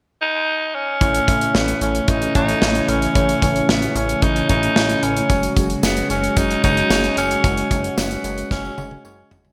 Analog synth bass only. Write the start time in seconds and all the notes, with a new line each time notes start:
1.01 A1
1.28 A1
1.55 A1
1.81 A1
2.08 A1
2.35 A1
2.62 A1
2.88 A1
3.15 A1
3.42 A1
3.69 A1
3.95 A1
4.22 A1
4.50 A1
4.76 A1
5.03 A1
5.30 F#1
5.57 F#1
5.83 F#1
6.10 F#1
6.37 F#1
6.64 F#1
6.90 F#1
7.17 F#1
7.44 F#1
7.71 F#1
7.98 F#1
8.24 F#1
8.51 F#1
8.78 F#1
9.04 F#1
9.31 F#1